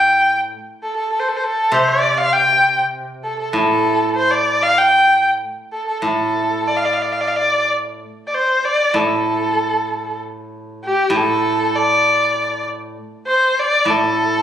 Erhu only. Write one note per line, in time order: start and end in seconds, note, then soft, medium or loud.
0.00 0.36 G5 medium
0.83 0.96 A4 medium
0.97 1.12 A4 medium
1.12 1.21 A4 medium
1.20 1.30 C5 medium
1.28 1.38 A4 medium
1.37 1.46 C5 medium
1.44 1.75 A4 medium
1.74 1.90 C5 medium
1.88 2.19 D5 medium
2.18 2.34 F5 loud
2.33 2.78 G5 loud
3.23 3.38 A4 medium
3.39 3.53 A4 medium
3.55 4.12 A4 medium
4.17 4.32 C5 medium
4.31 4.64 D5 medium
4.63 4.80 F5 loud
4.78 5.25 G5 loud
5.72 5.87 A4 medium
5.88 6.03 A4 medium
6.04 6.68 A4 medium
6.67 6.78 D5 medium
6.77 6.86 F5 medium
6.85 6.95 D5 medium
6.93 7.03 F5 medium
7.02 7.14 D5 medium
7.12 7.22 F5 medium
7.21 7.29 D5 medium
7.27 7.38 F5 medium
7.36 7.69 D5 medium
8.27 8.36 D5 medium
8.34 8.66 C5 medium
8.65 8.97 D5 medium
8.95 10.19 A4 medium
10.85 11.18 G4 medium
11.16 11.77 A4 medium
11.75 12.65 D5 medium
13.27 13.61 C5 medium
13.59 13.92 D5 medium
13.90 14.42 A4 loud